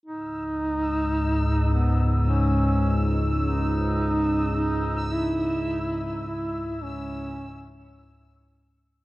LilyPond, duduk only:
\new Staff \with { instrumentName = "Duduk" } { \time 4/4 \key cis \minor \tempo 4 = 53 dis'4. b8 cis'8. r16 dis'4 | dis'8 e'4 e'8 cis'4 r4 | }